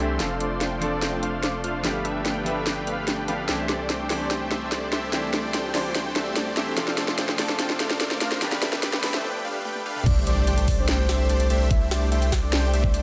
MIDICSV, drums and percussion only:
0, 0, Header, 1, 2, 480
1, 0, Start_track
1, 0, Key_signature, 0, "major"
1, 0, Tempo, 410959
1, 235, Time_signature, 4, 2, 24, 8
1, 15212, End_track
2, 0, Start_track
2, 0, Title_t, "Drums"
2, 233, Note_on_c, 9, 38, 58
2, 233, Note_on_c, 9, 42, 76
2, 350, Note_off_c, 9, 38, 0
2, 350, Note_off_c, 9, 42, 0
2, 473, Note_on_c, 9, 42, 60
2, 589, Note_off_c, 9, 42, 0
2, 713, Note_on_c, 9, 38, 59
2, 713, Note_on_c, 9, 42, 74
2, 830, Note_off_c, 9, 38, 0
2, 830, Note_off_c, 9, 42, 0
2, 954, Note_on_c, 9, 42, 58
2, 1070, Note_off_c, 9, 42, 0
2, 1194, Note_on_c, 9, 38, 63
2, 1194, Note_on_c, 9, 42, 77
2, 1311, Note_off_c, 9, 38, 0
2, 1311, Note_off_c, 9, 42, 0
2, 1434, Note_on_c, 9, 42, 60
2, 1551, Note_off_c, 9, 42, 0
2, 1674, Note_on_c, 9, 38, 63
2, 1674, Note_on_c, 9, 42, 70
2, 1791, Note_off_c, 9, 38, 0
2, 1791, Note_off_c, 9, 42, 0
2, 1915, Note_on_c, 9, 42, 58
2, 2031, Note_off_c, 9, 42, 0
2, 2154, Note_on_c, 9, 38, 62
2, 2154, Note_on_c, 9, 42, 70
2, 2271, Note_off_c, 9, 38, 0
2, 2271, Note_off_c, 9, 42, 0
2, 2393, Note_on_c, 9, 42, 58
2, 2510, Note_off_c, 9, 42, 0
2, 2634, Note_on_c, 9, 38, 66
2, 2634, Note_on_c, 9, 42, 73
2, 2751, Note_off_c, 9, 38, 0
2, 2751, Note_off_c, 9, 42, 0
2, 2875, Note_on_c, 9, 42, 60
2, 2991, Note_off_c, 9, 42, 0
2, 3113, Note_on_c, 9, 38, 71
2, 3113, Note_on_c, 9, 42, 75
2, 3230, Note_off_c, 9, 38, 0
2, 3230, Note_off_c, 9, 42, 0
2, 3354, Note_on_c, 9, 42, 64
2, 3471, Note_off_c, 9, 42, 0
2, 3593, Note_on_c, 9, 38, 65
2, 3593, Note_on_c, 9, 42, 73
2, 3710, Note_off_c, 9, 38, 0
2, 3710, Note_off_c, 9, 42, 0
2, 3833, Note_on_c, 9, 42, 56
2, 3950, Note_off_c, 9, 42, 0
2, 4072, Note_on_c, 9, 38, 72
2, 4072, Note_on_c, 9, 42, 70
2, 4189, Note_off_c, 9, 38, 0
2, 4189, Note_off_c, 9, 42, 0
2, 4311, Note_on_c, 9, 38, 73
2, 4311, Note_on_c, 9, 42, 63
2, 4428, Note_off_c, 9, 38, 0
2, 4428, Note_off_c, 9, 42, 0
2, 4552, Note_on_c, 9, 38, 76
2, 4552, Note_on_c, 9, 42, 77
2, 4669, Note_off_c, 9, 38, 0
2, 4669, Note_off_c, 9, 42, 0
2, 4790, Note_on_c, 9, 38, 76
2, 4790, Note_on_c, 9, 46, 94
2, 4907, Note_off_c, 9, 38, 0
2, 4907, Note_off_c, 9, 46, 0
2, 5031, Note_on_c, 9, 38, 78
2, 5031, Note_on_c, 9, 42, 77
2, 5148, Note_off_c, 9, 38, 0
2, 5148, Note_off_c, 9, 42, 0
2, 5272, Note_on_c, 9, 38, 74
2, 5272, Note_on_c, 9, 42, 63
2, 5389, Note_off_c, 9, 38, 0
2, 5389, Note_off_c, 9, 42, 0
2, 5511, Note_on_c, 9, 38, 75
2, 5511, Note_on_c, 9, 42, 70
2, 5628, Note_off_c, 9, 38, 0
2, 5628, Note_off_c, 9, 42, 0
2, 5753, Note_on_c, 9, 38, 82
2, 5753, Note_on_c, 9, 42, 58
2, 5869, Note_off_c, 9, 38, 0
2, 5869, Note_off_c, 9, 42, 0
2, 5992, Note_on_c, 9, 38, 80
2, 5992, Note_on_c, 9, 42, 76
2, 6109, Note_off_c, 9, 38, 0
2, 6109, Note_off_c, 9, 42, 0
2, 6232, Note_on_c, 9, 38, 83
2, 6232, Note_on_c, 9, 42, 63
2, 6349, Note_off_c, 9, 38, 0
2, 6349, Note_off_c, 9, 42, 0
2, 6472, Note_on_c, 9, 38, 86
2, 6472, Note_on_c, 9, 42, 78
2, 6589, Note_off_c, 9, 38, 0
2, 6589, Note_off_c, 9, 42, 0
2, 6712, Note_on_c, 9, 38, 87
2, 6712, Note_on_c, 9, 46, 97
2, 6829, Note_off_c, 9, 38, 0
2, 6829, Note_off_c, 9, 46, 0
2, 6953, Note_on_c, 9, 38, 90
2, 6953, Note_on_c, 9, 42, 79
2, 7070, Note_off_c, 9, 38, 0
2, 7070, Note_off_c, 9, 42, 0
2, 7193, Note_on_c, 9, 38, 84
2, 7193, Note_on_c, 9, 42, 63
2, 7310, Note_off_c, 9, 38, 0
2, 7310, Note_off_c, 9, 42, 0
2, 7432, Note_on_c, 9, 38, 87
2, 7432, Note_on_c, 9, 42, 78
2, 7549, Note_off_c, 9, 38, 0
2, 7549, Note_off_c, 9, 42, 0
2, 7671, Note_on_c, 9, 38, 85
2, 7671, Note_on_c, 9, 42, 60
2, 7788, Note_off_c, 9, 38, 0
2, 7788, Note_off_c, 9, 42, 0
2, 7912, Note_on_c, 9, 38, 89
2, 7912, Note_on_c, 9, 42, 83
2, 8029, Note_off_c, 9, 38, 0
2, 8029, Note_off_c, 9, 42, 0
2, 8032, Note_on_c, 9, 38, 83
2, 8149, Note_off_c, 9, 38, 0
2, 8151, Note_on_c, 9, 38, 94
2, 8151, Note_on_c, 9, 42, 69
2, 8268, Note_off_c, 9, 38, 0
2, 8268, Note_off_c, 9, 42, 0
2, 8271, Note_on_c, 9, 38, 83
2, 8388, Note_off_c, 9, 38, 0
2, 8392, Note_on_c, 9, 38, 93
2, 8392, Note_on_c, 9, 42, 83
2, 8509, Note_off_c, 9, 38, 0
2, 8509, Note_off_c, 9, 42, 0
2, 8512, Note_on_c, 9, 38, 83
2, 8629, Note_off_c, 9, 38, 0
2, 8631, Note_on_c, 9, 38, 99
2, 8631, Note_on_c, 9, 46, 102
2, 8748, Note_off_c, 9, 38, 0
2, 8748, Note_off_c, 9, 46, 0
2, 8751, Note_on_c, 9, 38, 81
2, 8868, Note_off_c, 9, 38, 0
2, 8870, Note_on_c, 9, 38, 102
2, 8870, Note_on_c, 9, 42, 81
2, 8987, Note_off_c, 9, 38, 0
2, 8987, Note_off_c, 9, 42, 0
2, 8990, Note_on_c, 9, 38, 83
2, 9107, Note_off_c, 9, 38, 0
2, 9111, Note_on_c, 9, 38, 94
2, 9111, Note_on_c, 9, 42, 69
2, 9227, Note_off_c, 9, 38, 0
2, 9227, Note_off_c, 9, 42, 0
2, 9231, Note_on_c, 9, 38, 90
2, 9348, Note_off_c, 9, 38, 0
2, 9350, Note_on_c, 9, 38, 101
2, 9350, Note_on_c, 9, 42, 80
2, 9467, Note_off_c, 9, 38, 0
2, 9467, Note_off_c, 9, 42, 0
2, 9472, Note_on_c, 9, 38, 87
2, 9588, Note_off_c, 9, 38, 0
2, 9592, Note_on_c, 9, 38, 95
2, 9592, Note_on_c, 9, 42, 61
2, 9709, Note_off_c, 9, 38, 0
2, 9709, Note_off_c, 9, 42, 0
2, 9712, Note_on_c, 9, 38, 90
2, 9829, Note_off_c, 9, 38, 0
2, 9833, Note_on_c, 9, 38, 101
2, 9833, Note_on_c, 9, 42, 85
2, 9950, Note_off_c, 9, 38, 0
2, 9950, Note_off_c, 9, 42, 0
2, 9953, Note_on_c, 9, 38, 95
2, 10070, Note_off_c, 9, 38, 0
2, 10073, Note_on_c, 9, 38, 109
2, 10073, Note_on_c, 9, 42, 70
2, 10190, Note_off_c, 9, 38, 0
2, 10190, Note_off_c, 9, 42, 0
2, 10193, Note_on_c, 9, 38, 89
2, 10310, Note_off_c, 9, 38, 0
2, 10313, Note_on_c, 9, 38, 104
2, 10313, Note_on_c, 9, 42, 83
2, 10430, Note_off_c, 9, 38, 0
2, 10430, Note_off_c, 9, 42, 0
2, 10433, Note_on_c, 9, 38, 99
2, 10550, Note_off_c, 9, 38, 0
2, 10553, Note_on_c, 9, 38, 104
2, 10553, Note_on_c, 9, 46, 101
2, 10670, Note_off_c, 9, 38, 0
2, 10670, Note_off_c, 9, 46, 0
2, 10675, Note_on_c, 9, 38, 93
2, 10791, Note_off_c, 9, 38, 0
2, 11273, Note_on_c, 9, 48, 61
2, 11390, Note_off_c, 9, 48, 0
2, 11394, Note_on_c, 9, 48, 61
2, 11511, Note_off_c, 9, 48, 0
2, 11635, Note_on_c, 9, 45, 82
2, 11751, Note_off_c, 9, 45, 0
2, 11753, Note_on_c, 9, 42, 82
2, 11753, Note_on_c, 9, 49, 103
2, 11754, Note_on_c, 9, 36, 117
2, 11870, Note_off_c, 9, 42, 0
2, 11870, Note_off_c, 9, 49, 0
2, 11871, Note_off_c, 9, 36, 0
2, 11994, Note_on_c, 9, 42, 71
2, 12111, Note_off_c, 9, 42, 0
2, 12232, Note_on_c, 9, 42, 83
2, 12349, Note_off_c, 9, 42, 0
2, 12353, Note_on_c, 9, 42, 65
2, 12470, Note_off_c, 9, 42, 0
2, 12472, Note_on_c, 9, 46, 90
2, 12474, Note_on_c, 9, 36, 60
2, 12589, Note_off_c, 9, 46, 0
2, 12591, Note_off_c, 9, 36, 0
2, 12713, Note_on_c, 9, 38, 127
2, 12713, Note_on_c, 9, 42, 84
2, 12830, Note_off_c, 9, 38, 0
2, 12830, Note_off_c, 9, 42, 0
2, 12953, Note_on_c, 9, 40, 76
2, 12953, Note_on_c, 9, 42, 71
2, 13070, Note_off_c, 9, 40, 0
2, 13070, Note_off_c, 9, 42, 0
2, 13192, Note_on_c, 9, 42, 81
2, 13309, Note_off_c, 9, 42, 0
2, 13313, Note_on_c, 9, 42, 63
2, 13430, Note_off_c, 9, 42, 0
2, 13434, Note_on_c, 9, 42, 67
2, 13550, Note_off_c, 9, 42, 0
2, 13673, Note_on_c, 9, 42, 82
2, 13674, Note_on_c, 9, 36, 124
2, 13790, Note_off_c, 9, 42, 0
2, 13791, Note_off_c, 9, 36, 0
2, 13915, Note_on_c, 9, 40, 78
2, 13915, Note_on_c, 9, 42, 69
2, 14031, Note_off_c, 9, 40, 0
2, 14031, Note_off_c, 9, 42, 0
2, 14155, Note_on_c, 9, 42, 82
2, 14272, Note_off_c, 9, 42, 0
2, 14274, Note_on_c, 9, 42, 64
2, 14391, Note_off_c, 9, 42, 0
2, 14393, Note_on_c, 9, 40, 82
2, 14393, Note_on_c, 9, 46, 95
2, 14394, Note_on_c, 9, 36, 64
2, 14510, Note_off_c, 9, 40, 0
2, 14510, Note_off_c, 9, 46, 0
2, 14511, Note_off_c, 9, 36, 0
2, 14633, Note_on_c, 9, 38, 127
2, 14633, Note_on_c, 9, 42, 83
2, 14750, Note_off_c, 9, 38, 0
2, 14750, Note_off_c, 9, 42, 0
2, 14875, Note_on_c, 9, 42, 66
2, 14992, Note_off_c, 9, 42, 0
2, 14994, Note_on_c, 9, 36, 66
2, 15111, Note_off_c, 9, 36, 0
2, 15113, Note_on_c, 9, 42, 81
2, 15212, Note_off_c, 9, 42, 0
2, 15212, End_track
0, 0, End_of_file